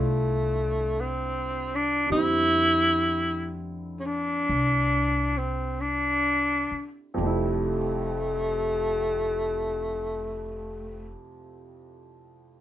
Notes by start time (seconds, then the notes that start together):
Already playing: C2 D3 G3 A3 C4 D4 E4 F4
1.00 C4
1.75 D4
2.06 D3 G3
2.10 F2 C4 E4
2.16 E4
3.99 C#4
4.06 D4
4.49 C2
5.37 C4
5.81 D4
6.71 muted upright bass stroke
7.14 F2 C3
7.18 F1 G3 A3
7.23 A3 E4